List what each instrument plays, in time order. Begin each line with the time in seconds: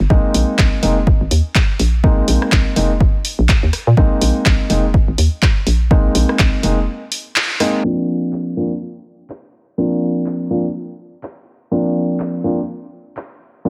0.00 fm bass G1
0.10 fm bass A#1, felt piano G#3 A#3 C4 D#4, kick
0.34 fm bass A#1, open hi-hat
0.59 fm bass A#1, kick, clap
0.83 fm bass F1, felt piano G#3 A#3 C4 D#4, open hi-hat
1.07 kick
1.21 fm bass G#1
1.31 fm bass D#2, open hi-hat
1.55 kick, clap
1.79 fm bass A#1, open hi-hat
2.04 felt piano G#3 A#3 C4 D#4, kick
2.28 fm bass A#1, open hi-hat
2.42 cross-stick
2.52 fm bass A#1, kick, clap
2.76 fm bass F1, felt piano G#3 A#3 C4 D#4, open hi-hat
3.00 kick
3.25 open hi-hat
3.39 fm bass A#1
3.49 kick, clap
3.63 fm bass D#2
3.73 cross-stick, open hi-hat
3.87 fm bass A#2
3.97 fm bass A#1, felt piano G#3 A#3 C4 D#4, kick
4.21 fm bass A#1, open hi-hat
4.46 fm bass A#1, kick, clap
4.70 fm bass F1, felt piano G#3 A#3 C4 D#4, open hi-hat
4.94 kick
5.08 fm bass G#1
5.18 fm bass D#2, open hi-hat
5.42 kick, clap
5.67 fm bass A#1, open hi-hat
5.91 felt piano G#3 A#3 C4 D#4, kick
6.15 fm bass A#1, open hi-hat
6.29 cross-stick
6.39 fm bass A#1, kick, clap
6.63 fm bass F1, felt piano G#3 A#3 C4 D#4, open hi-hat
7.12 open hi-hat
7.36 clap
7.60 felt piano G#3 A#3 C4 D#4, cross-stick, open hi-hat
7.84 felt piano F3 A#3 C4 D4
8.33 clap
8.57 felt piano F3 A#3 C4 D4
9.30 clap
9.78 felt piano F3 A#3 C4 D4
10.26 clap
10.50 felt piano F3 A#3 C4 D4
11.23 clap
11.71 felt piano F3 A#3 C4 D4
12.20 clap
12.44 felt piano F3 A#3 C4 D4
13.17 clap
13.65 felt piano F3 A#3 C4 D4